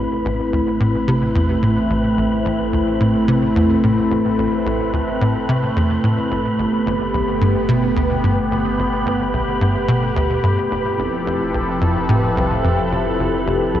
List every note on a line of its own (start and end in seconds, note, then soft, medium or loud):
0.00 6.28 A1 medium
0.00 10.67 A3 medium
0.00 6.27 C4 medium
0.00 6.27 E4 medium
0.00 13.80 B4 medium
0.00 13.80 B5 medium
0.25 0.40 A1 loud
0.53 0.62 D2 medium
0.80 0.95 A2 medium
1.08 1.30 C3 loud
1.35 1.58 E2 loud
1.63 1.78 A2 medium
1.90 2.05 A1 medium
2.18 2.27 A1 medium
2.45 2.60 A1 loud
2.73 2.82 D2 medium
3.01 3.15 A2 medium
3.28 3.50 C3 loud
3.56 3.78 E2 loud
3.83 3.98 A2 medium
4.11 4.26 A1 medium
4.38 4.47 A1 medium
4.66 4.81 A1 loud
4.93 5.02 D2 medium
5.21 5.36 A2 medium
5.48 5.71 C3 loud
5.76 5.98 E2 loud
6.04 6.18 A2 medium
6.31 6.46 G1 medium
6.31 10.69 G1 medium
6.31 10.68 B3 medium
6.31 13.80 G4 medium
6.58 6.67 G1 medium
6.86 7.01 G1 loud
7.14 7.22 B1 medium
7.41 7.56 G2 medium
7.69 7.91 B2 loud
7.96 8.18 D2 loud
8.24 8.39 G2 medium
8.51 8.66 G1 medium
8.79 8.88 G1 medium
9.06 9.21 G1 loud
9.34 9.43 B1 medium
9.61 9.76 G2 medium
9.89 10.11 B2 loud
10.16 10.38 D2 loud
10.44 10.59 G2 medium
10.71 13.80 F1 medium
10.71 10.86 F1 medium
10.71 13.80 F3 medium
10.71 13.80 C4 medium
10.71 13.80 E4 medium
10.71 13.80 A4 medium
10.99 11.08 F1 medium
11.26 11.41 F1 loud
11.54 11.63 B1 medium
11.81 11.96 F2 medium
12.09 12.31 A2 loud
12.36 12.59 C2 loud
12.64 12.79 F2 medium
12.91 13.06 F1 medium
13.19 13.28 F1 medium
13.47 13.61 F1 loud
13.74 13.80 B1 medium